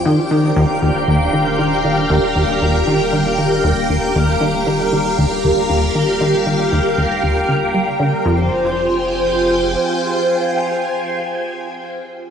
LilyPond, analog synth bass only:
\new Staff \with { instrumentName = "Analog synth bass" } { \clef bass \time 4/4 \key f \dorian \tempo 4 = 117 ees16 r16 ees8 ees,8 ees,8 ees,8 ees16 r16 ees16 r16 ees8 | ees,8 ees,8 ees,8 ees16 r16 ees16 r16 ees8 ees,8 ees,8 | ees,8 ees16 r16 ees16 r16 ees8 ees,8 ees,8 ees,8 ees16 r16 | ees16 r16 ees8 ees,8 ees,8 ees,8 d16 r16 g16 r16 d16 r16 |
f,8 r2. r8 | r1 | }